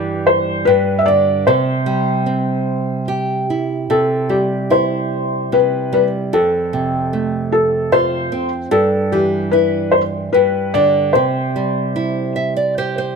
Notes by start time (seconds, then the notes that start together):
Already playing: G2 E3 G3 G4
0.27 C5
0.65 G2 B4
0.99 E5
1.06 D3 D5
1.47 C3 C5
1.86 G3
2.26 C4
3.08 G4
3.50 E4
3.90 C3 A4
4.29 G3 G4
4.70 E4 C5
5.52 C3 B4
5.93 G3 B4
6.33 F2 A4
6.73 C3
7.13 A3
7.52 A4
7.92 F4 C5
8.32 C4
8.71 G2 A4
9.12 E3 G4
9.51 E4 B4
9.91 C5
10.33 G2 B4
10.74 D3 D5
11.13 C3 C5
11.56 G3
11.96 E4
12.36 E5
12.56 D5
12.78 G4 C5
12.98 C5